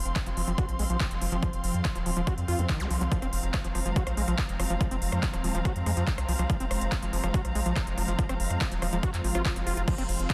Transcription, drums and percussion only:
0.05 closed hi-hat soft
0.16 kick loud
0.16 clap loud
0.16 closed hi-hat medium
0.26 closed hi-hat medium
0.37 open hi-hat loud
0.48 closed hi-hat soft
0.58 kick loud
0.58 closed hi-hat medium
0.69 closed hi-hat soft
0.79 open hi-hat loud
0.90 closed hi-hat medium
1.00 kick loud
1.00 clap loud
1.00 closed hi-hat medium
1.11 closed hi-hat medium
1.22 open hi-hat loud
1.32 closed hi-hat medium
1.43 kick loud
1.43 closed hi-hat medium
1.53 closed hi-hat soft
1.64 open hi-hat loud
1.74 closed hi-hat soft
1.85 kick loud
1.85 clap loud
1.85 closed hi-hat medium
1.95 closed hi-hat soft
2.06 open hi-hat loud
2.17 closed hi-hat medium
2.27 kick loud
2.27 closed hi-hat medium
2.38 closed hi-hat soft
2.48 open hi-hat loud
2.59 closed hi-hat soft
2.69 kick loud
2.69 clap loud
2.69 closed hi-hat medium
2.80 closed hi-hat soft
2.91 open hi-hat loud
3.01 closed hi-hat medium
3.12 kick loud
3.12 closed hi-hat medium
3.22 cross-stick soft
3.22 closed hi-hat soft
3.33 open hi-hat loud
3.43 closed hi-hat soft
3.54 kick loud
3.54 cross-stick medium
3.54 clap loud
3.54 closed hi-hat medium
3.64 closed hi-hat soft
3.75 cross-stick soft
3.75 open hi-hat loud
3.86 closed hi-hat medium
3.96 kick loud
3.96 closed hi-hat medium
4.07 cross-stick medium
4.07 closed hi-hat soft
4.17 open hi-hat loud
4.28 cross-stick soft
4.28 closed hi-hat medium
4.38 kick loud
4.38 clap loud
4.38 closed hi-hat medium
4.49 closed hi-hat soft
4.60 cross-stick medium
4.60 open hi-hat loud
4.70 closed hi-hat medium
4.81 kick loud
4.81 cross-stick soft
4.81 closed hi-hat medium
4.91 closed hi-hat medium
5.02 open hi-hat loud
5.12 cross-stick medium
5.12 closed hi-hat soft
5.23 kick loud
5.23 clap loud
5.23 closed hi-hat medium
5.34 cross-stick soft
5.34 closed hi-hat medium
5.44 open hi-hat loud
5.55 closed hi-hat medium
5.65 kick loud
5.65 cross-stick medium
5.65 closed hi-hat medium
5.76 closed hi-hat medium
5.86 cross-stick soft
5.86 open hi-hat loud
5.97 closed hi-hat medium
6.07 kick loud
6.07 clap loud
6.07 closed hi-hat medium
6.18 cross-stick medium
6.18 closed hi-hat medium
6.29 open hi-hat loud
6.39 cross-stick soft
6.39 closed hi-hat medium
6.50 kick loud
6.50 closed hi-hat medium
6.60 closed hi-hat medium
6.71 cross-stick medium
6.71 open hi-hat loud
6.81 closed hi-hat medium
6.92 kick loud
6.92 cross-stick soft
6.92 clap loud
6.92 closed hi-hat medium
7.03 closed hi-hat medium
7.13 open hi-hat loud
7.24 cross-stick medium
7.24 closed hi-hat medium
7.34 kick loud
7.34 closed hi-hat medium
7.45 cross-stick soft
7.45 closed hi-hat medium
7.55 open hi-hat loud
7.66 closed hi-hat medium
7.76 kick loud
7.76 cross-stick medium
7.76 clap loud
7.76 closed hi-hat medium
7.87 closed hi-hat medium
7.98 cross-stick soft
7.98 open hi-hat loud
8.08 closed hi-hat medium
8.19 kick loud
8.19 closed hi-hat medium
8.29 cross-stick medium
8.29 closed hi-hat medium
8.40 open hi-hat loud
8.50 cross-stick soft
8.50 closed hi-hat medium
8.61 kick loud
8.61 clap loud
8.61 closed hi-hat medium
8.72 closed hi-hat medium
8.82 cross-stick medium
8.82 open hi-hat loud
8.93 closed hi-hat medium
9.03 kick loud
9.03 cross-stick soft
9.03 closed hi-hat medium
9.14 clap soft
9.14 closed hi-hat medium
9.24 open hi-hat loud
9.35 cross-stick medium
9.35 closed hi-hat medium
9.45 kick loud
9.45 clap loud
9.45 closed hi-hat medium
9.56 cross-stick soft
9.56 closed hi-hat medium
9.67 open hi-hat loud
9.77 closed hi-hat medium
9.88 kick loud
9.88 closed hi-hat medium
9.88 crash medium
9.98 cross-stick soft
9.98 closed hi-hat medium
10.09 open hi-hat loud
10.19 closed hi-hat medium
10.30 kick loud
10.30 cross-stick medium
10.30 clap loud
10.30 closed hi-hat medium

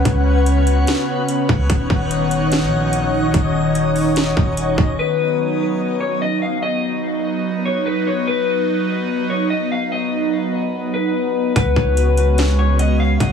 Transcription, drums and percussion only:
0.05 kick loud
0.05 closed hi-hat medium
0.46 closed hi-hat medium
0.67 closed hi-hat medium
0.87 snare loud
0.87 closed hi-hat medium
1.29 closed hi-hat medium
1.49 kick loud
1.70 kick loud
1.70 closed hi-hat medium
1.90 kick medium
2.11 closed hi-hat medium
2.31 closed hi-hat medium
2.52 snare loud
2.52 closed hi-hat medium
2.93 closed hi-hat medium
3.34 kick loud
3.34 closed hi-hat medium
3.75 closed hi-hat medium
3.96 open hi-hat medium
4.16 snare loud
4.16 closed hi-hat medium
4.37 kick loud
4.57 closed hi-hat medium
4.78 kick loud
11.56 kick loud
11.56 closed hi-hat medium
11.76 kick loud
11.97 closed hi-hat medium
12.17 closed hi-hat medium
12.38 snare loud
12.38 closed hi-hat medium
12.79 closed hi-hat medium
13.20 kick loud
13.20 closed hi-hat medium

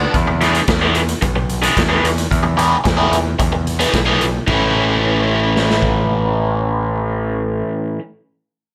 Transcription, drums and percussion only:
0.14 kick medium
0.14 closed hi-hat soft
0.41 snare soft
0.41 closed hi-hat soft
0.55 closed hi-hat soft
0.68 kick medium
0.68 snare medium
0.68 closed hi-hat soft
0.95 closed hi-hat medium
1.09 closed hi-hat medium
1.22 kick loud
1.22 closed hi-hat medium
1.50 closed hi-hat soft
1.63 closed hi-hat soft
1.77 kick medium
1.77 snare medium
1.77 closed hi-hat medium
2.05 closed hi-hat medium
2.18 closed hi-hat medium
2.31 kick medium
2.31 closed hi-hat medium
2.59 closed hi-hat medium
2.85 kick medium
2.85 snare medium
2.85 closed hi-hat medium
3.13 closed hi-hat medium
3.40 kick medium
3.40 closed hi-hat medium
3.67 closed hi-hat soft
3.80 closed hi-hat soft
3.94 kick medium
3.94 snare medium
3.94 closed hi-hat soft
4.21 closed hi-hat soft
4.48 kick medium
4.48 crash medium
5.57 snare soft
5.70 snare medium
5.82 kick medium

